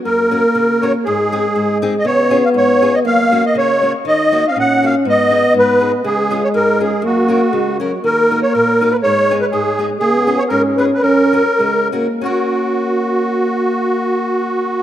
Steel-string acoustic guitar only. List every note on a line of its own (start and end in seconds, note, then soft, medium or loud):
0.05 0.43 F#2 medium
0.31 0.42 C#4 medium
0.31 0.42 F#4 medium
0.31 0.42 A#4 medium
0.55 0.93 C#3 medium
0.82 0.93 C#4 medium
0.82 0.93 F#4 medium
0.82 0.93 A#4 medium
1.07 1.44 G#2 medium
1.32 1.43 C4 medium
1.32 1.43 D#4 medium
1.32 1.43 G#4 medium
1.56 1.93 G#2 medium
1.82 1.93 C4 medium
1.82 1.93 D#4 medium
1.82 1.93 G#4 medium
2.05 2.43 C#3 medium
2.30 2.41 C#4 medium
2.30 2.42 F4 medium
2.30 2.42 G#4 medium
2.54 2.92 G#2 medium
2.82 2.92 C#4 medium
2.82 2.92 F4 medium
2.82 2.92 G#4 medium
3.05 3.43 F#2 medium
3.32 3.42 A#3 medium
3.32 3.42 C#4 medium
3.32 3.42 F#4 medium
3.55 3.93 C#3 medium
3.82 3.92 A#3 medium
3.82 3.93 C#4 medium
3.82 3.93 F#4 medium
4.05 4.43 D#3 medium
4.32 4.42 A#3 medium
4.32 4.43 D#4 medium
4.32 4.43 F#4 medium
4.56 4.94 A#2 medium
4.83 4.93 A#3 medium
4.83 4.93 D#4 medium
4.83 4.93 F#4 medium
5.05 5.43 G#2 medium
5.31 5.41 B3 medium
5.31 5.42 D#4 medium
5.31 5.42 G#4 medium
5.54 5.92 G#2 medium
5.80 5.91 B3 medium
5.80 5.91 D#4 medium
5.80 5.91 G#4 medium
6.04 6.42 C#3 medium
6.31 6.41 C#4 medium
6.31 6.41 F4 medium
6.31 6.41 G#4 medium
6.54 6.91 G#2 medium
6.80 6.90 C#4 medium
6.80 6.91 F4 medium
6.80 6.91 G#4 medium
7.02 7.40 F#2 medium
7.28 7.39 C#4 medium
7.28 7.40 F#4 medium
7.28 7.40 A#4 medium
7.53 7.91 C#3 medium
7.80 7.90 C#4 medium
7.80 7.91 F#4 medium
7.80 7.91 A#4 medium
8.04 8.42 D#3 medium
8.31 8.41 D#4 medium
8.31 8.41 F#4 medium
8.31 8.42 A#4 medium
8.55 8.92 A#2 medium
8.81 8.91 D#4 medium
8.81 8.92 F#4 medium
8.81 8.92 A#4 medium
9.05 9.41 G#2 medium
9.31 9.41 B3 medium
9.31 9.40 D#4 medium
9.31 9.41 G#4 medium
9.53 9.89 G#2 medium
9.79 9.89 B3 medium
9.79 9.89 D#4 medium
9.79 9.89 G#4 medium
10.01 10.38 C#3 medium
10.27 10.37 C#4 medium
10.27 10.38 F4 medium
10.27 10.38 G#4 medium
10.50 10.90 G#2 medium
10.78 10.89 C#4 medium
10.78 10.89 F4 medium
10.78 10.90 G#4 medium
11.04 11.46 F#2 medium
11.33 11.45 C#4 medium
11.33 11.45 F#4 medium
11.33 11.45 A#4 medium
11.60 12.07 C#3 medium
11.92 12.06 C#4 medium
11.92 12.06 F#4 medium
11.92 12.06 A#4 medium
12.21 14.83 C#4 medium
12.21 14.83 F#4 medium
12.26 14.83 A#4 medium